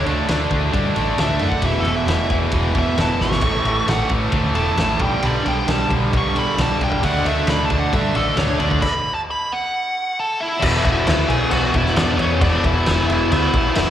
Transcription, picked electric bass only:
0.06 0.23 D2 medium
0.30 0.46 D2 medium
0.51 0.68 D2 medium
0.74 0.90 G2 medium
0.97 1.13 A1 medium
1.20 1.36 D2 medium
1.42 1.58 F#2 medium
1.64 1.80 E1 medium
1.86 2.02 E1 medium
2.07 2.24 E1 medium
2.30 2.47 E1 medium
2.53 2.86 E1 medium
2.97 3.14 E1 medium
3.20 3.37 G#1 medium
3.43 3.59 A1 medium
3.65 3.82 A1 medium
3.88 4.04 A1 medium
4.10 4.27 A1 medium
4.33 4.50 D2 medium
4.55 4.72 E1 medium
4.78 5.01 A1 medium
5.01 5.17 B1 medium
5.23 5.39 B1 medium
5.46 5.62 B1 medium
5.68 5.84 B1 medium
5.91 6.07 B1 medium
6.14 6.46 B1 medium
6.58 6.75 B1 medium
6.80 6.97 B1 medium
7.04 7.20 D2 medium
7.25 7.42 D2 medium
7.47 7.64 D2 medium
7.70 7.87 D2 medium
7.93 8.09 G2 medium
8.15 8.31 A1 medium
8.38 8.54 D2 medium
8.60 8.76 D2 medium
10.63 10.79 E1 loud
10.85 11.01 E1 loud
11.07 11.23 D2 loud
11.29 11.45 B1 medium
11.52 11.68 B1 loud
11.74 11.90 E1 loud
11.97 12.13 E2 loud
12.20 12.36 E2 medium
12.41 12.57 E1 loud
12.64 12.80 E1 medium
12.87 13.03 E1 loud
13.09 13.25 E1 loud
13.32 13.48 D2 loud
13.54 13.70 A1 loud
13.77 13.90 E1 loud

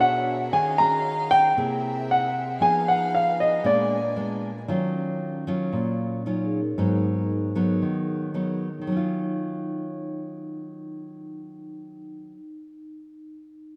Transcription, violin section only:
0.00 0.49 D4 medium
0.00 1.52 G#4 medium
0.00 1.52 A#4 medium
0.00 0.49 C#5 medium
0.00 0.50 E5 medium
0.52 1.55 C#4 medium
0.52 1.55 D#5 medium
0.52 1.55 F5 medium
1.55 2.59 C4 medium
1.55 3.62 G#4 medium
1.55 2.59 A#4 medium
1.55 2.59 E5 medium
2.60 3.63 D#4 medium
2.60 4.67 B4 medium
2.60 3.63 F5 medium
3.64 4.67 D4 medium
3.64 4.67 A#4 medium
3.64 4.67 G#5 medium

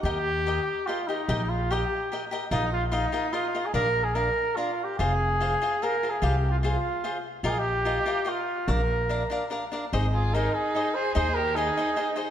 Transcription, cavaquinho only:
0.05 0.17 G4 medium
0.05 0.17 A#4 medium
0.05 0.17 D#5 medium
0.05 0.18 G5 medium
0.46 0.59 G4 soft
0.46 0.59 A#4 medium
0.46 0.59 D#5 medium
0.46 0.60 G5 medium
0.87 1.00 G4 soft
0.87 1.00 A#4 medium
0.87 1.01 D#5 medium
0.87 1.01 G5 medium
1.09 1.20 G4 soft
1.09 1.21 A#4 soft
1.09 1.21 D#5 soft
1.09 1.21 G5 soft
1.29 1.41 G4 medium
1.29 1.41 A#4 medium
1.29 1.41 D#5 medium
1.29 1.42 G5 medium
1.71 1.83 G4 medium
1.71 1.83 A#4 medium
1.71 1.83 D#5 medium
1.71 1.84 G5 medium
2.12 2.24 G4 soft
2.12 2.24 A#4 medium
2.12 2.24 D#5 medium
2.12 2.24 G5 soft
2.31 2.43 G4 medium
2.31 2.44 A#4 medium
2.31 2.44 D#5 medium
2.31 2.44 G5 medium
2.51 2.64 F4 medium
2.51 2.64 A#4 medium
2.51 2.64 D#5 medium
2.51 2.64 F5 medium
2.92 3.04 F4 medium
2.92 3.05 A#4 medium
2.92 3.05 D#5 medium
2.92 3.05 F5 medium
3.12 3.25 F4 medium
3.12 3.25 A#4 medium
3.12 3.26 D#5 medium
3.12 3.26 F5 medium
3.33 3.46 F4 medium
3.33 3.46 A#4 medium
3.33 3.46 D#5 medium
3.33 3.46 F5 medium
3.55 3.67 F4 soft
3.55 3.67 A#4 soft
3.55 3.67 D#5 soft
3.55 3.67 F5 medium
3.74 3.87 D4 medium
3.74 3.87 A#4 medium
3.74 3.87 D5 medium
3.74 3.87 F5 medium
4.15 4.28 D4 medium
4.15 4.28 A#4 soft
4.15 4.28 D5 soft
4.15 4.29 F5 medium
4.57 4.70 D4 soft
4.57 4.70 A#4 medium
4.57 4.70 D5 medium
4.57 4.71 F5 soft
4.99 5.12 F4 medium
4.99 5.12 G#4 medium
4.99 5.12 C5 medium
4.99 5.12 F5 medium
5.41 5.53 F4 medium
5.41 5.53 G#4 medium
5.41 5.54 C5 medium
5.41 5.54 F5 medium
5.62 5.74 F4 medium
5.62 5.74 G#4 medium
5.62 5.74 C5 medium
5.62 5.75 F5 medium
5.82 5.94 F4 soft
5.82 5.95 G#4 soft
5.82 5.95 C5 medium
5.82 5.95 F5 medium
6.03 6.15 F4 soft
6.03 6.15 G#4 soft
6.03 6.15 C5 soft
6.03 6.16 F5 soft
6.22 6.34 F4 medium
6.22 6.35 G#4 medium
6.22 6.35 C5 medium
6.22 6.35 F5 medium
6.63 6.75 F4 medium
6.63 6.76 G#4 medium
6.63 6.76 C5 medium
6.63 6.76 F5 medium
7.04 7.16 F4 soft
7.04 7.16 G#4 medium
7.04 7.17 C5 medium
7.04 7.17 F5 soft
7.44 7.57 F4 medium
7.44 7.57 A#4 medium
7.44 7.57 D#5 medium
7.44 7.57 F5 medium
7.85 7.98 F4 medium
7.85 7.98 A#4 medium
7.85 7.98 D#5 medium
7.85 7.98 F5 medium
8.06 8.18 F4 medium
8.06 8.18 A#4 medium
8.06 8.19 D#5 medium
8.06 8.19 F5 medium
8.25 8.38 F4 medium
8.25 8.39 A#4 medium
8.25 8.39 D#5 soft
8.25 8.39 F5 medium
8.68 8.80 D4 medium
8.68 8.81 A#4 medium
8.68 8.81 D5 medium
8.68 8.81 F5 medium
9.09 9.22 D4 medium
9.09 9.22 A#4 medium
9.09 9.23 D5 medium
9.09 9.23 F5 medium
9.30 9.42 D4 medium
9.30 9.43 A#4 medium
9.30 9.43 D5 medium
9.30 9.44 F5 medium
9.50 9.63 D4 soft
9.50 9.63 A#4 medium
9.50 9.64 D5 soft
9.50 9.64 F5 medium
9.72 9.84 D4 soft
9.72 9.85 A#4 soft
9.72 9.85 D5 soft
9.72 9.85 F5 medium
9.93 10.05 D#4 medium
9.93 10.05 G#4 medium
9.93 10.05 C5 medium
9.93 10.06 D#5 medium
10.34 10.47 D#4 medium
10.34 10.47 G#4 medium
10.34 10.47 C5 medium
10.34 10.47 D#5 medium
10.75 10.87 D#4 soft
10.75 10.87 G#4 medium
10.75 10.88 C5 soft
10.75 10.88 D#5 medium
11.15 11.27 D#4 medium
11.15 11.28 G#4 medium
11.15 11.28 C5 medium
11.15 11.28 D#5 medium
11.56 11.69 D#4 medium
11.56 11.69 G#4 medium
11.56 11.69 C5 medium
11.56 11.70 D#5 medium
11.77 11.89 D#4 medium
11.77 11.89 G#4 medium
11.77 11.89 C5 medium
11.77 11.90 D#5 medium
11.96 12.09 D#4 medium
11.96 12.09 G#4 medium
11.96 12.09 C5 medium
11.96 12.10 D#5 medium
12.16 12.28 D#4 medium
12.16 12.29 G#4 soft
12.16 12.29 C5 medium
12.16 12.29 D#5 medium

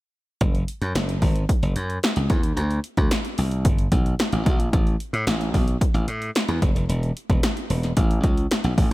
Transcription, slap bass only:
0.41 0.63 F#1 loud
0.82 0.92 F#2 medium
0.95 1.17 F#1 medium
1.22 1.44 G#1 medium
1.63 1.74 F#1 medium
1.76 1.98 F#2 loud
2.17 2.28 C#2 medium
2.30 2.43 E2 medium
2.43 2.54 D#2 medium
2.57 2.79 D2 loud
2.98 3.09 D2 medium
3.38 3.66 C2 medium
3.65 3.87 G1 loud
3.92 4.14 B1 medium
4.33 4.44 A1 medium
4.46 4.59 B1 medium
4.59 4.70 A#1 medium
4.73 4.95 A1 loud
5.13 5.24 A2 medium
5.27 5.49 A1 medium
5.54 5.76 B1 medium
5.94 6.05 A1 loud
6.08 6.30 A2 medium
6.48 6.59 E2 medium
6.62 6.73 F#1 medium
6.75 6.86 F1 medium
6.89 7.11 E1 loud
7.30 7.40 E1 medium
7.70 7.92 E1 medium
7.97 8.19 A1 loud
8.24 8.46 C#2 medium
8.64 8.75 B1 medium
8.78 8.89 A1 medium

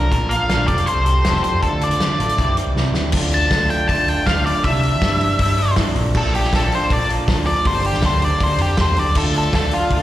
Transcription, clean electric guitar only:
0.00 0.11 D3 medium
0.00 0.11 A3 medium
0.00 0.11 D4 medium
0.00 0.12 F4 medium
0.00 0.12 A4 loud
0.10 0.49 A#2 medium
0.10 0.49 F3 medium
0.10 0.31 A#3 medium
0.10 0.30 D4 medium
0.10 0.29 F4 medium
0.10 0.27 A#4 loud
0.28 0.47 A#3 medium
0.28 0.48 D4 medium
0.28 0.48 F4 medium
0.28 0.50 A#4 medium
0.48 0.66 A#3 medium
0.48 0.67 D4 medium
0.48 0.67 F4 medium
0.48 0.66 A#4 medium
0.67 1.23 F3 medium
0.67 1.24 G3 medium
0.67 1.07 C4 medium
0.67 1.05 G4 medium
0.67 1.04 A4 medium
1.05 1.26 C4 medium
1.05 1.26 G4 medium
1.05 1.26 A4 medium
1.24 1.61 F3 medium
1.24 1.62 G3 medium
1.24 1.62 C4 medium
1.24 1.63 G4 loud
1.24 1.63 A4 loud
1.61 1.97 D3 medium
1.61 1.82 A3 medium
1.61 1.81 D4 loud
1.61 1.78 F4 loud
1.80 1.98 A3 medium
1.80 2.00 D4 medium
1.80 2.01 F4 medium
1.99 2.36 D3 medium
1.99 2.20 A3 medium
1.99 2.18 D4 medium
1.99 2.16 F4 medium
2.18 2.37 D4 medium
2.18 2.36 F4 medium
2.22 2.38 A3 medium
2.38 2.74 C3 medium
2.38 2.76 E3 medium
2.38 2.58 G3 loud
2.38 2.57 C4 loud
2.38 2.55 E4 loud
2.56 2.76 G3 medium
2.56 2.77 C4 medium
2.56 2.78 E4 medium
2.76 3.12 C3 medium
2.76 3.13 E3 medium
2.76 3.13 G3 medium
2.76 3.14 C4 loud
2.76 3.14 E4 medium
3.13 3.51 D3 medium
3.13 3.51 A3 loud
3.13 3.52 D4 loud
3.13 3.53 F4 loud
3.52 3.88 D3 medium
3.52 3.89 A3 medium
3.52 3.91 D4 medium
3.52 3.91 F4 loud
3.89 4.25 D3 medium
3.89 4.10 A3 medium
3.89 4.09 D4 medium
3.89 4.06 F4 medium
4.08 4.25 A3 medium
4.08 4.27 D4 medium
4.08 4.28 F4 medium
4.26 4.63 D3 medium
4.26 4.48 A3 loud
4.26 4.48 D4 loud
4.26 4.45 F4 medium
4.46 4.65 A3 medium
4.46 4.67 D4 medium
4.46 4.64 F4 medium
4.65 5.21 C3 loud
4.65 5.02 E3 loud
4.65 5.03 G3 medium
4.65 5.04 D4 loud
4.65 5.04 E4 loud
5.03 5.39 E3 medium
5.03 5.40 G3 medium
5.03 5.43 D4 medium
5.03 5.42 E4 medium
5.41 5.75 E3 medium
5.41 5.60 G3 medium
5.41 5.60 D4 medium
5.41 5.57 E4 medium
5.58 5.76 G3 medium
5.58 5.77 D4 medium
5.58 5.77 E4 medium
5.76 5.94 C3 loud
5.76 5.94 E3 loud
5.76 5.95 G3 loud
5.76 5.95 D4 loud
5.76 5.95 E4 loud
5.95 6.13 A#2 medium
5.95 6.15 D3 medium
5.95 6.15 F3 medium
5.95 6.17 A#3 medium
5.95 6.17 D4 loud
6.15 6.71 A#2 loud
6.15 6.51 D3 medium
6.15 6.53 F3 loud
6.15 6.54 A#3 loud
6.15 6.55 D4 loud
6.52 6.88 D3 medium
6.52 6.89 F3 medium
6.52 6.90 A#3 medium
6.52 6.91 D4 medium
6.89 7.26 D3 medium
6.89 7.11 F3 medium
6.89 7.09 A#3 medium
6.89 7.08 D4 loud
7.08 7.27 F3 medium
7.08 7.28 A#3 medium
7.08 7.29 D4 medium
7.27 7.64 A#2 loud
7.27 7.64 D3 loud
7.27 7.49 F3 loud
7.27 7.47 A#3 loud
7.27 7.46 D4 loud
7.46 7.66 F3 medium
7.46 7.65 A#3 medium
7.46 7.67 D4 medium
7.65 8.22 G2 loud
7.65 8.00 D3 loud
7.65 8.02 G3 loud
7.65 8.02 A#3 medium
7.65 8.04 D4 loud
8.01 8.39 D3 medium
8.01 8.41 G3 medium
8.01 8.42 A#3 medium
8.01 8.43 D4 medium
8.40 8.75 D3 medium
8.40 8.61 G3 medium
8.40 8.60 A#3 medium
8.40 8.59 D4 medium
8.59 8.76 G3 medium
8.59 8.78 A#3 medium
8.59 8.79 D4 medium
8.75 9.13 G2 loud
8.75 9.13 D3 loud
8.75 8.98 G3 loud
8.75 8.97 A#3 loud
8.75 8.96 D4 loud
8.96 9.15 G3 medium
8.96 9.15 A#3 medium
8.96 9.17 D4 medium
9.15 9.50 D3 medium
9.15 9.52 A3 loud
9.15 9.54 D4 loud
9.15 9.53 F4 loud
9.52 9.89 D3 medium
9.52 9.89 A3 medium
9.52 9.92 D4 medium
9.52 9.91 F4 medium
9.90 10.02 D3 medium
9.90 10.02 A3 medium
9.90 10.02 D4 medium
9.90 10.02 F4 medium

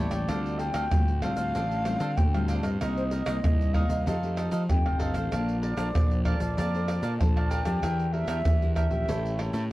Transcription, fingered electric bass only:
0.12 0.26 A1 medium
0.30 0.70 D2 loud
0.74 0.89 D2 medium
0.92 1.32 D2 medium
1.37 1.52 D2 medium
1.55 1.95 A1 medium
2.00 2.15 D3 medium
2.18 2.58 D2 medium
2.64 2.78 G2 medium
2.82 3.21 C2 loud
3.26 3.40 C2 medium
3.44 3.84 C2 medium
3.89 4.03 C2 medium
4.07 4.47 F2 medium
4.52 4.66 F3 medium
4.70 4.83 F2 medium
4.86 4.99 F1 medium
5.00 5.14 G1 medium
5.15 5.30 A1 medium
5.33 5.73 A#1 loud
5.77 5.91 A#1 medium
5.95 6.35 A#1 medium
6.40 6.54 A#1 medium
6.58 6.98 F2 loud
7.03 7.17 A#2 medium
7.21 7.61 A#1 loud
7.66 7.80 F2 medium
7.83 8.23 E2 loud
8.28 8.42 E2 medium
8.46 8.86 E2 loud
8.90 9.05 A#1 medium
9.09 9.48 A1 medium
9.53 9.68 A2 medium

